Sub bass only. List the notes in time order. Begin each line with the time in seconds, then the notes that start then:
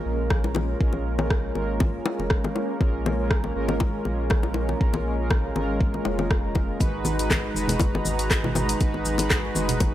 0.05 A#1
0.81 A#1
1.55 G#1
2.19 F1
2.81 A#1
3.56 G#1
4.05 A#1
4.81 A#1
5.56 G#1
6.06 F1
6.80 G#1
7.55 F#1
8.05 G#1
8.81 G#1
9.56 F#1